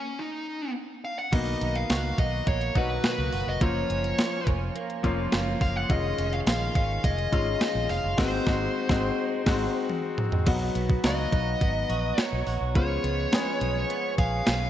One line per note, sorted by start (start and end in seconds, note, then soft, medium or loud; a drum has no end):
0.00 0.20 C#4 medium
0.19 0.72 D#4 medium
1.04 1.17 F5 loud
1.19 1.33 F#5 medium
1.32 1.54 B1 medium
1.32 3.61 D#3 medium
1.32 2.14 A#3 medium
1.32 2.14 B3 medium
1.32 2.15 D#4 medium
1.32 2.15 F#4 medium
1.32 1.77 D#5 loud
1.32 kick loud
1.32 closed hi-hat medium
1.32 crash medium
1.61 1.83 B1 medium
1.61 2.17 D#4 medium
1.61 closed hi-hat medium
1.75 1.89 F5 loud
1.75 closed hi-hat soft
1.90 2.11 C#2 medium
1.90 2.75 F#4 medium
1.90 2.17 F5 loud
1.90 snare loud
1.90 closed hi-hat loud
2.18 2.40 B1 medium
2.18 3.67 D#4 medium
2.18 2.48 D#5 medium
2.18 kick medium
2.18 closed hi-hat medium
2.47 2.68 A#1 medium
2.47 3.04 A#3 medium
2.47 2.77 C#5 loud
2.47 kick medium
2.47 closed hi-hat medium
2.61 closed hi-hat soft
2.75 2.97 B1 medium
2.75 3.37 B2 medium
2.75 3.37 F#3 medium
2.75 3.37 D#4 medium
2.75 3.32 F#4 medium
2.75 3.37 F#4 medium
2.75 3.03 B4 medium
2.75 kick medium
2.75 closed hi-hat medium
3.04 4.75 A#3 medium
3.04 3.49 B4 medium
3.04 snare loud
3.04 closed hi-hat medium
3.18 3.29 C#2 medium
3.33 3.43 F#1 medium
3.33 4.18 F#4 medium
3.33 open hi-hat medium
3.47 3.58 F1 medium
3.47 3.63 D#5 medium
3.60 3.83 F#1 medium
3.60 4.43 F3 medium
3.60 5.89 F3 medium
3.60 4.43 A#3 medium
3.60 4.43 C#4 medium
3.60 4.43 F4 medium
3.60 4.48 C#5 medium
3.60 kick loud
3.60 closed hi-hat medium
3.90 4.11 F#1 medium
3.90 4.47 C#4 medium
3.90 closed hi-hat medium
4.04 closed hi-hat medium
4.18 5.04 F4 medium
4.18 snare loud
4.18 closed hi-hat loud
4.47 4.68 F1 medium
4.47 6.18 C#4 medium
4.47 kick medium
4.47 closed hi-hat medium
4.75 5.31 A#3 medium
4.75 closed hi-hat medium
4.90 closed hi-hat soft
5.03 5.25 F1 medium
5.03 5.65 F3 medium
5.03 5.65 A#3 medium
5.03 5.65 C#4 medium
5.03 5.61 F4 medium
5.03 5.66 F4 loud
5.03 kick medium
5.03 closed hi-hat medium
5.32 5.54 F#1 medium
5.32 5.95 A#3 medium
5.32 snare loud
5.32 closed hi-hat medium
5.61 5.82 F#1 medium
5.61 6.47 F4 medium
5.61 5.76 F5 loud
5.61 kick medium
5.61 open hi-hat medium
5.76 5.90 F#5 loud
5.89 6.11 F1 loud
5.89 8.68 D#3 medium
5.89 6.71 G#3 medium
5.89 6.71 C#4 medium
5.89 6.72 D#4 medium
5.89 6.72 F4 medium
5.89 6.33 D#5 loud
5.89 kick loud
5.89 closed hi-hat medium
5.89 tambourine soft
6.18 6.40 F1 loud
6.18 6.74 C#4 medium
6.18 closed hi-hat medium
6.18 tambourine medium
6.33 6.39 F5 loud
6.33 closed hi-hat medium
6.47 6.68 A#1 medium
6.47 7.31 F4 medium
6.47 6.74 F5 loud
6.47 snare loud
6.47 closed hi-hat loud
6.47 tambourine medium
6.75 6.97 G#1 medium
6.75 8.18 C#4 medium
6.75 7.04 F5 medium
6.75 kick medium
6.75 closed hi-hat medium
6.75 tambourine soft
7.04 7.25 F1 medium
7.04 7.61 G#3 medium
7.04 7.60 D#5 loud
7.04 kick loud
7.04 closed hi-hat medium
7.04 tambourine soft
7.18 closed hi-hat soft
7.32 7.54 G#1 medium
7.32 7.94 G#3 medium
7.32 7.94 C#4 medium
7.32 7.94 D#4 medium
7.32 7.88 F4 medium
7.32 7.94 F4 medium
7.32 kick medium
7.32 closed hi-hat medium
7.32 tambourine medium
7.61 8.68 G#3 medium
7.61 7.90 D#5 medium
7.61 snare loud
7.61 closed hi-hat medium
7.61 tambourine medium
7.75 7.86 A#1 loud
7.89 8.00 F1 loud
7.89 8.18 F4 medium
7.89 8.16 F5 loud
7.89 open hi-hat medium
7.89 tambourine soft
8.04 8.14 F#1 medium
8.17 8.38 G#1 medium
8.17 8.37 G#3 medium
8.17 8.37 C4 loud
8.17 8.38 D#4 medium
8.17 8.38 F#4 loud
8.17 9.86 C5 medium
8.17 kick loud
8.17 snare loud
8.17 crash medium
8.46 8.66 G#1 loud
8.46 8.66 G#3 loud
8.46 8.66 C4 loud
8.46 8.66 D#4 loud
8.46 8.66 F#4 loud
8.46 kick loud
8.46 snare loud
8.89 9.09 G#1 loud
8.89 9.09 G#3 loud
8.89 9.09 C4 medium
8.89 9.09 D#4 loud
8.89 9.09 F#4 loud
8.89 kick loud
8.89 snare loud
9.46 9.66 G#1 loud
9.46 9.66 G#3 loud
9.46 9.66 C4 loud
9.46 9.66 D#4 loud
9.46 9.67 F#4 loud
9.46 kick loud
9.46 snare loud
9.46 crash medium
9.90 high tom medium
10.18 mid tom medium
10.32 floor tom medium
10.46 10.68 B1 loud
10.46 10.88 F#3 medium
10.46 12.75 F#3 medium
10.46 10.88 B3 medium
10.46 10.88 D#4 medium
10.46 10.88 F#4 medium
10.46 kick loud
10.46 closed hi-hat medium
10.46 crash loud
10.46 tambourine soft
10.75 10.97 B1 loud
10.75 11.61 B3 medium
10.75 closed hi-hat medium
10.75 tambourine medium
10.90 kick loud
11.03 11.25 C#2 medium
11.03 11.86 F#3 medium
11.03 11.86 B3 medium
11.03 11.86 D#4 medium
11.03 11.89 F#4 medium
11.03 12.22 D#5 medium
11.03 11.86 F5 medium
11.03 snare loud
11.03 closed hi-hat loud
11.03 tambourine medium
11.32 11.54 B1 medium
11.32 12.17 D#4 medium
11.32 kick medium
11.32 closed hi-hat medium
11.61 11.83 G#1 medium
11.61 13.04 B3 medium
11.61 kick loud
11.61 closed hi-hat medium
11.61 tambourine soft
11.90 12.11 A#1 medium
11.90 12.46 F#4 medium
11.90 closed hi-hat medium
11.90 tambourine medium
12.18 12.81 D#4 medium
12.18 12.76 C#5 medium
12.18 snare loud
12.18 closed hi-hat medium
12.18 tambourine medium
12.33 12.43 B1 medium
12.47 12.58 A#1 medium
12.47 12.81 F#4 medium
12.47 open hi-hat medium
12.47 tambourine soft
12.61 12.76 B1 medium
12.75 12.97 C#2 medium
12.75 14.70 F3 medium
12.75 13.16 G#3 medium
12.75 13.16 B3 medium
12.75 13.16 C#4 medium
12.75 13.17 F4 medium
12.75 14.15 C#5 medium
12.75 kick loud
12.75 closed hi-hat medium
13.04 13.25 C#2 medium
13.04 13.89 B3 medium
13.04 closed hi-hat medium
13.04 tambourine medium
13.32 14.14 G#3 medium
13.32 14.14 B3 medium
13.32 14.15 C#4 medium
13.32 14.18 G#4 medium
13.32 14.15 G#4 medium
13.32 snare loud
13.32 closed hi-hat loud
13.32 tambourine medium
13.61 13.83 B1 medium
13.61 14.46 C#4 medium
13.61 closed hi-hat medium
13.90 14.70 B3 medium
13.90 closed hi-hat medium
13.90 tambourine soft
14.18 14.40 A#1 loud
14.18 14.70 G#4 medium
14.18 14.45 F5 loud
14.18 kick medium
14.18 closed hi-hat medium
14.18 tambourine medium
14.47 14.68 B1 medium
14.47 14.70 C#4 medium
14.47 14.70 F5 loud
14.47 snare loud
14.47 closed hi-hat medium
14.47 tambourine medium